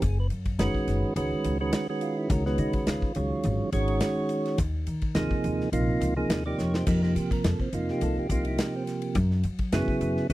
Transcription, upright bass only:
0.02 0.28 F#1 loud
0.30 0.57 F#2 medium
0.59 0.73 F#1 medium
0.74 muted upright bass stroke soft
0.87 1.02 F#1 medium
1.16 1.30 C#2 medium
1.31 muted upright bass stroke soft
1.45 1.71 C#2 medium
2.30 2.56 C#2 loud
2.58 2.85 C#3 medium
2.87 3.01 C#2 medium
3.02 muted upright bass stroke soft
3.16 3.30 C#2 medium
3.44 3.59 G#1 medium
3.60 muted upright bass stroke soft
3.72 3.99 G#1 medium
4.58 4.85 D#2 loud
4.87 5.13 D#3 medium
5.15 5.30 D#2 medium
5.30 muted upright bass stroke soft
5.44 5.58 D#2 medium
5.72 5.87 A#1 medium
5.88 muted upright bass stroke soft
6.01 6.27 C#2 medium
6.29 6.56 D#2 medium
6.59 6.85 F2 medium
6.87 7.13 F2 loud
7.16 7.42 F3 medium
7.45 7.59 F2 medium
7.59 muted upright bass stroke soft
7.73 7.87 F2 medium
8.02 8.16 C2 medium
8.16 muted upright bass stroke soft
8.29 8.56 C2 medium
9.15 9.42 F#2 loud
9.44 9.70 F#3 medium
9.72 9.87 F#2 medium
9.88 muted upright bass stroke soft
10.01 10.15 F#2 medium
10.30 10.33 C#2 medium

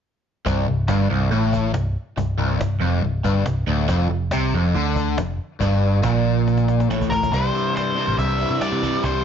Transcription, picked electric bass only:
0.46 0.66 C1 medium
0.68 0.88 C1 medium
0.89 1.09 G1 loud
1.10 1.30 C1 medium
1.32 1.72 A1 medium
1.75 1.95 C1 medium
2.17 2.37 C1 medium
2.39 2.59 C1 medium
2.61 2.81 C1 medium
2.82 3.02 F1 medium
3.03 3.23 C1 medium
3.25 3.45 G1 medium
3.45 3.66 C1 medium
3.67 3.87 D1 medium
3.89 4.09 F1 medium
4.09 4.30 F1 medium
4.31 4.51 C2 loud
4.53 4.73 F1 medium
4.74 5.15 D2 medium
5.18 5.38 F1 medium
5.61 6.01 G1 medium
6.03 6.85 A#1 medium
6.91 7.30 A1 medium
7.33 7.49 C2 medium
8.08 8.16 A1 medium
8.19 8.43 C2 medium
8.50 8.59 C3 medium
8.72 8.97 C3 medium
9.04 9.24 C2 loud

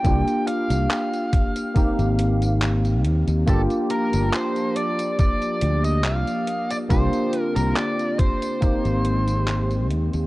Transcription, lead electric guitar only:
0.00 0.47 G5 loud
0.47 3.01 F5 loud
3.48 3.60 A4 loud
3.90 4.35 A#4 medium
4.34 4.76 C5 medium
4.76 5.16 D5 loud
5.19 5.84 D5 loud
5.85 6.03 D#5 loud
6.05 6.73 F5 loud
6.71 6.76 D5 medium
6.90 7.41 C5 loud
7.41 7.56 A#4 loud
7.56 7.77 A#4 loud
7.76 8.19 D5 loud
8.19 9.87 C5 medium

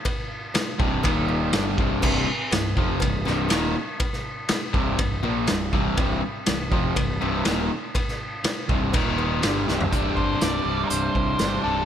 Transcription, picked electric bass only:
0.56 muted picked electric bass stroke soft
0.80 1.03 C1 loud
1.05 1.50 D#1 loud
1.53 1.76 G1 medium
1.79 2.01 C1 medium
2.03 2.26 C1 loud
2.28 muted picked electric bass stroke soft
2.52 2.75 C1 medium
2.77 3.00 F1 loud
3.02 3.25 C1 medium
3.27 3.50 C1 loud
3.51 3.74 D#1 medium
4.51 muted picked electric bass stroke soft
4.74 4.97 C1 loud
4.99 5.22 C1 medium
5.24 5.47 A#1 medium
5.49 5.72 C1 medium
5.73 5.96 C1 medium
5.98 6.21 C1 loud
6.24 muted picked electric bass stroke soft
6.48 6.71 C1 medium
6.72 6.94 F1 medium
6.97 7.19 C1 medium
7.21 7.44 C1 medium
7.46 7.69 D#1 medium
8.45 muted picked electric bass stroke soft
8.69 8.92 C1 loud
8.94 9.40 D#1 loud
9.44 9.66 G1 medium
9.68 9.91 C1 loud
9.93 10.10 C1 medium
10.17 10.34 G1 medium
10.42 10.59 C1 medium
10.66 10.83 C1 medium
10.91 11.08 C1 medium
11.15 11.33 C2 medium
11.40 11.58 G1 medium
11.65 11.82 C1 medium

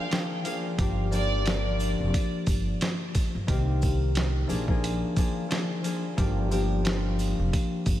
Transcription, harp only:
0.00 1.09 C4 medium
0.00 0.10 G#4 loud
0.09 0.43 F3 medium
0.09 0.42 A#3 medium
0.09 0.43 D4 medium
0.09 0.43 G#4 medium
0.44 0.77 F3 medium
0.44 0.77 A#3 medium
0.44 0.77 D4 medium
0.44 0.77 G#4 medium
0.78 1.10 F3 medium
0.78 1.10 A#3 medium
0.78 1.11 D4 medium
0.78 1.11 G4 loud
1.11 1.43 F3 loud
1.11 1.44 A#3 medium
1.11 1.44 D4 medium
1.11 1.45 G4 loud
1.45 3.54 F3 medium
1.45 3.47 A#3 medium
1.45 3.53 D4 medium
1.45 3.49 G4 medium
3.47 4.55 D#3 medium
3.47 4.47 A#3 medium
3.47 6.49 C4 medium
3.47 4.55 G4 loud
4.47 4.67 F3 medium
4.47 4.67 A#3 medium
4.47 4.68 D4 medium
4.47 4.69 G#4 loud
4.68 5.15 F3 loud
4.68 5.13 A#3 medium
4.68 5.14 D4 medium
4.68 5.14 G#4 medium
5.16 5.47 F3 medium
5.16 5.48 A#3 medium
5.16 5.49 D4 medium
5.16 5.49 G#4 loud
5.48 5.82 F3 medium
5.48 5.81 A#3 medium
5.48 5.82 D4 medium
5.48 5.82 G#4 medium
5.83 6.16 F3 medium
5.83 6.16 A#3 medium
5.83 6.16 D4 medium
5.83 6.17 G#4 medium
6.17 6.49 F3 medium
6.17 6.50 A#3 medium
6.17 6.50 D4 medium
6.17 6.50 G4 loud
6.50 6.83 F3 loud
6.50 6.83 A#3 medium
6.50 6.83 D4 medium
6.50 6.84 G4 loud
6.84 8.00 F3 medium
6.84 8.00 A#3 medium
6.84 8.00 D4 medium
6.84 8.00 G4 loud

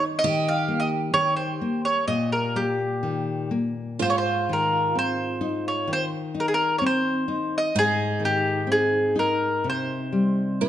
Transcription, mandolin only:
0.19 0.52 D#5 loud
0.48 0.79 F5 medium
0.80 0.89 D#5 medium
1.14 1.36 C#5 loud
1.36 1.81 C5 medium
1.85 2.07 C#5 medium
2.08 2.32 D#5 medium
2.32 2.57 A#4 medium
2.56 3.48 G4 medium
4.02 4.05 C5 medium
4.10 4.16 C#5 medium
4.18 4.49 C5 medium
4.53 4.98 A#4 medium
4.99 5.68 C5 medium
5.68 5.91 C#5 medium
5.93 6.05 C5 loud
6.40 6.45 A#4 medium
6.48 6.52 G#4 medium
6.54 6.78 A#4 medium
6.78 6.84 C#5 medium
6.86 7.57 C5 medium
7.58 7.79 D#5 medium
7.79 8.25 G#4 loud
8.25 8.71 G4 medium
8.72 9.15 G#4 medium
9.19 9.67 A#4 medium
9.70 10.69 C5 medium

